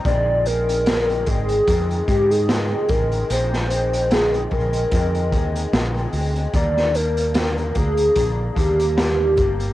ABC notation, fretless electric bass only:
X:1
M:4/4
L:1/8
Q:"Swing 16ths" 1/4=74
K:Bbmix
V:1 name="Fretless electric bass" clef=bass
B,,,3 A,,, F,, A,,2 =A,,, | B,,,3 B,,, F,, E,, B,,, D,, | E,,3 D,, B,,, E,,2 G,,, |]